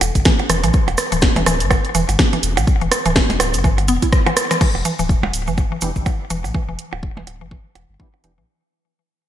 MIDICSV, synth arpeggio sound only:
0, 0, Header, 1, 2, 480
1, 0, Start_track
1, 0, Key_signature, 1, "minor"
1, 0, Tempo, 483871
1, 732, Time_signature, 4, 2, 24, 8
1, 9215, End_track
2, 0, Start_track
2, 0, Title_t, "Synth arpeggio sound"
2, 0, Program_c, 0, 84
2, 253, Note_on_c, 0, 52, 101
2, 317, Note_off_c, 0, 52, 0
2, 493, Note_on_c, 0, 52, 106
2, 557, Note_off_c, 0, 52, 0
2, 632, Note_on_c, 0, 52, 101
2, 678, Note_off_c, 0, 52, 0
2, 1112, Note_on_c, 0, 52, 104
2, 1158, Note_off_c, 0, 52, 0
2, 1352, Note_on_c, 0, 52, 101
2, 1398, Note_off_c, 0, 52, 0
2, 1452, Note_on_c, 0, 52, 105
2, 1516, Note_off_c, 0, 52, 0
2, 1932, Note_on_c, 0, 52, 109
2, 1996, Note_off_c, 0, 52, 0
2, 2172, Note_on_c, 0, 52, 105
2, 2236, Note_off_c, 0, 52, 0
2, 2312, Note_on_c, 0, 52, 100
2, 2358, Note_off_c, 0, 52, 0
2, 2793, Note_on_c, 0, 52, 106
2, 2838, Note_off_c, 0, 52, 0
2, 3032, Note_on_c, 0, 52, 104
2, 3078, Note_off_c, 0, 52, 0
2, 3133, Note_on_c, 0, 52, 103
2, 3197, Note_off_c, 0, 52, 0
2, 3613, Note_on_c, 0, 52, 106
2, 3677, Note_off_c, 0, 52, 0
2, 3853, Note_on_c, 0, 59, 108
2, 3891, Note_off_c, 0, 59, 0
2, 3993, Note_on_c, 0, 64, 78
2, 4039, Note_off_c, 0, 64, 0
2, 4233, Note_on_c, 0, 52, 104
2, 4260, Note_off_c, 0, 52, 0
2, 4473, Note_on_c, 0, 52, 79
2, 4519, Note_off_c, 0, 52, 0
2, 4574, Note_on_c, 0, 52, 103
2, 4637, Note_off_c, 0, 52, 0
2, 4813, Note_on_c, 0, 52, 102
2, 4877, Note_off_c, 0, 52, 0
2, 4953, Note_on_c, 0, 52, 100
2, 4998, Note_off_c, 0, 52, 0
2, 5433, Note_on_c, 0, 52, 94
2, 5479, Note_off_c, 0, 52, 0
2, 5673, Note_on_c, 0, 52, 106
2, 5719, Note_off_c, 0, 52, 0
2, 5774, Note_on_c, 0, 52, 103
2, 5837, Note_off_c, 0, 52, 0
2, 6254, Note_on_c, 0, 52, 104
2, 6317, Note_off_c, 0, 52, 0
2, 6493, Note_on_c, 0, 52, 101
2, 6557, Note_off_c, 0, 52, 0
2, 6633, Note_on_c, 0, 52, 94
2, 6678, Note_off_c, 0, 52, 0
2, 7113, Note_on_c, 0, 52, 92
2, 7159, Note_off_c, 0, 52, 0
2, 7353, Note_on_c, 0, 52, 96
2, 7399, Note_off_c, 0, 52, 0
2, 7453, Note_on_c, 0, 52, 99
2, 7517, Note_off_c, 0, 52, 0
2, 7933, Note_on_c, 0, 52, 94
2, 7997, Note_off_c, 0, 52, 0
2, 8173, Note_on_c, 0, 52, 94
2, 8237, Note_off_c, 0, 52, 0
2, 8313, Note_on_c, 0, 52, 92
2, 8358, Note_off_c, 0, 52, 0
2, 9215, End_track
0, 0, End_of_file